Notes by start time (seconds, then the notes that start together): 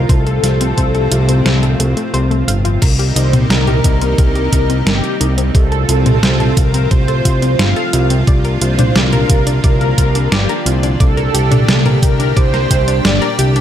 Already playing: F3 F4
0.09 C2 A2 C3 C4 A4 C5, kick, closed hi-hat
0.27 A4, closed hi-hat
0.43 C2 F4, snare, closed hi-hat
0.61 C4, closed hi-hat
0.77 C2 C5, kick, closed hi-hat
0.95 A4, closed hi-hat
1.11 C2 F4, closed hi-hat
1.29 C4, closed hi-hat
1.45 C2 C5, snare, closed hi-hat
1.63 A4, closed hi-hat
1.80 C2 A3, closed hi-hat
1.97 A3, closed hi-hat
2.14 C2 C5, closed hi-hat
2.31 A3, closed hi-hat
2.48 G1 F5, closed hi-hat
2.65 F4, closed hi-hat
2.82 C2 C3 D#3 G3 A#3 D#4 A#4, kick, closed hi-hat, crash
2.99 G4, closed hi-hat
3.16 C2 D#4 C5, closed hi-hat
3.33 C4, closed hi-hat, mid tom
3.50 C2 A#4, snare, closed hi-hat
3.67 G4, closed hi-hat, mid tom
3.84 C2 D#4, kick, closed hi-hat
4.01 C4, closed hi-hat
4.18 C2 A#4, kick, closed hi-hat
4.35 G4, closed hi-hat
4.52 C2 D#4, kick, closed hi-hat
4.70 C4, closed hi-hat
4.86 G1 G4 A#4, snare, closed hi-hat
5.04 G4, closed hi-hat
5.21 C2 D#4, closed hi-hat
5.38 C4, closed hi-hat
5.55 C2 A2 F3 C4 F4 A4 C5, kick, closed hi-hat
5.72 A4, closed hi-hat
5.89 C2 F4, closed hi-hat
6.06 C4, closed hi-hat, mid tom
6.23 C2 C5, snare, closed hi-hat
6.40 A4, closed hi-hat, mid tom
6.57 C2 F4 A#4, kick, closed hi-hat
6.74 C4, closed hi-hat
6.91 C2 C5, kick, closed hi-hat
7.08 A4, closed hi-hat
7.25 C2 F4, kick, closed hi-hat
7.42 C4, closed hi-hat
7.59 G1 C5 F5, snare, closed hi-hat
7.76 A4, closed hi-hat
7.93 C2 F4, closed hi-hat
8.10 C4, closed hi-hat
8.27 C2 A#2 D3 D4 D5, kick, closed hi-hat
8.45 A#4, closed hi-hat
8.61 C2 F4 C5, closed hi-hat
8.79 D4, closed hi-hat, mid tom
8.95 C2 A#4 D5, snare, closed hi-hat
9.13 A#4, closed hi-hat, mid tom
9.30 C2 F4, kick, closed hi-hat
9.47 D4, closed hi-hat
9.64 C2 A#4 D5, kick, closed hi-hat
9.81 A#4, closed hi-hat
9.98 C2 F4, kick, closed hi-hat
10.15 D4, closed hi-hat
10.32 G1 G4 D5, snare, closed hi-hat
10.49 A#4, closed hi-hat
10.66 C2 F4, closed hi-hat
10.83 D4, closed hi-hat
11.00 C2 D3 G3 G4 A4 D5, kick, closed hi-hat
11.17 A#4, closed hi-hat
11.34 C2 G4, closed hi-hat
11.51 D4, closed hi-hat, mid tom
11.68 C2 D5, snare, closed hi-hat
11.86 A#4, closed hi-hat, mid tom
12.02 C2 G4 A#4, kick, closed hi-hat
12.20 D4, closed hi-hat
12.36 C2 C5 D5, kick, closed hi-hat
12.54 A#4, snare, closed hi-hat
12.71 C2 G4, kick, closed hi-hat
12.88 D4, closed hi-hat
13.05 G1 D5, snare, closed hi-hat
13.22 A#4, closed hi-hat
13.39 C2 G4, closed hi-hat
13.56 D4, closed hi-hat